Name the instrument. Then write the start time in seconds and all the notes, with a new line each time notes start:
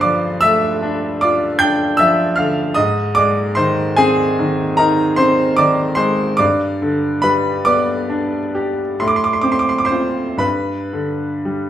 grand piano
Already playing: G2 D3 B4 C5 B5 C6
0.01 F3 D5 D6
0.41 A3 E5 E6
0.83 D4
1.21 F4 D5 D6
1.59 D4 G5 G6
1.97 F3 E5 E6
2.36 D3 F5 F6
2.74 G#2 D#5 D#6
3.15 G#3 D5 D6
3.55 D#3 C5 C6
3.96 C4 G#4 G#5
4.39 D#3
4.77 D#4 A#4 A#5
5.16 C4 C5 C6
5.57 D#3 D5 D6
5.95 G#3 C5 C6
6.37 G2 D5 D6
6.82 D3
7.22 G3 B4 B5
7.65 B3 D5 D6
8.10 D4
8.55 G4
9.00 A2 C6
9.08 D6
9.16 C6
9.24 D6
9.33 C6
9.41 C4 D6
9.52 C6
9.59 D6
9.69 C6
9.78 D6
9.85 C5 C6
9.91 C4 F4
10.37 G2 B4 B5
10.93 D3
11.45 G3